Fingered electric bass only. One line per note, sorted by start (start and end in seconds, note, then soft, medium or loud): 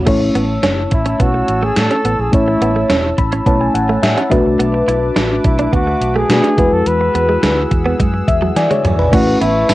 0.07 0.28 A1 loud
0.35 0.56 A1 medium
0.63 0.85 F#1 medium
0.92 1.13 A1 medium
1.20 1.41 B1 loud
1.49 1.70 A1 medium
1.76 1.87 A2 medium
2.05 2.16 A1 medium
2.19 2.30 A#1 medium
2.33 2.54 A1 loud
2.61 2.83 A1 medium
2.90 3.11 E1 medium
3.18 3.39 A1 medium
3.46 3.67 B1 medium
3.74 3.96 A1 medium
4.03 4.14 A2 medium
4.32 4.42 B1 medium
4.45 4.56 C2 medium
4.60 4.81 B1 loud
4.88 5.09 B1 medium
5.16 5.37 A1 medium
5.45 5.66 B1 medium
5.73 5.94 D2 medium
6.01 6.22 B1 medium
6.29 6.40 B2 loud
6.58 6.69 E2 medium
6.72 6.83 F2 medium
6.86 7.07 E2 loud
7.14 7.36 E2 medium
7.43 7.64 D2 loud
7.71 7.92 E2 medium
8.00 8.21 F#2 loud
8.28 8.49 E2 medium
8.56 8.67 E3 medium
8.84 8.95 E2 medium
8.99 9.09 A#1 medium
9.13 9.34 A1 loud
9.41 9.62 A1 medium
9.69 9.74 A1 medium